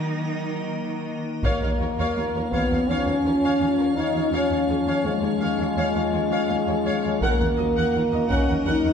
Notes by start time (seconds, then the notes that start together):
Already playing: D#3 F#3 A#3 D#4 A#4 D#5
1.43 D#2 F3 A#3 C#4 F4 C#5 F5, taiko
1.61 D#2 C#5 F5
1.79 D#2 A#4 C#5
1.97 D#2 C#5 F5
2.16 D#2 C#5 F5
2.35 D#2 A#4 C#5
2.50 D#2 B3 C#5 F5, taiko
2.70 D#2 C#5 F5
2.87 D#2 C#4 C#5 F5
3.06 D#2 C#5 F5
3.24 D#2 A#4 C#5
3.42 D#2 C#5 F5
3.60 D#2 C#5 F5
3.78 D#2 A#4 C#5
3.96 D#2 D#4 C#5 F5
4.14 D#2 C#5 F5
4.31 D#2 C#4 C#5 F5
4.50 D#2 C#5 F5
4.68 D#2 G#4 C#5
4.86 D#2 C#5 F5
5.04 D#2 G#3 C#5 F5
5.21 D#2 G#4 C#5
5.40 D#2 C#5 F5
5.58 D#2 C#5 F5
5.76 D#2 C#5 F5
5.94 D#2 C#5 F5
6.12 D#2 G#4 C#5
6.30 D#2 C#5 F5
6.48 D#2 C#5 F5
6.67 D#2 G#4 C#5
6.85 D#2 C#5 F5
7.02 D#2 C#5 F5
7.21 D#2 F#3 A#3 A#4 D#5 F#5, taiko
7.39 D#2 A#4 F#5
7.57 D#2 F#4 D#5
7.75 D#2 A#4 F#5
7.93 D#2 A#4 F#5
8.11 D#2 F#4 D#5
8.28 D#2 C#4 A#4 F#5, taiko
8.47 D#2 A#4 F#5
8.65 D#2 D#4 A#4 F#5
8.84 D#2 A#4 F#5